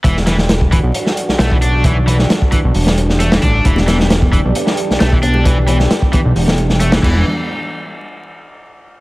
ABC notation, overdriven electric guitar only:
X:1
M:4/4
L:1/16
Q:"Swing 16ths" 1/4=133
K:Em
V:1 name="Overdriven electric guitar" clef=bass
E, z E, z3 E, z4 z A, E, D2 | E, z E, z3 E, z4 z A, E, D2 | E, z E, z3 E, z4 z A, E, D2 | E, z E, z3 E, z4 z A, E, E,2 |
z16 |]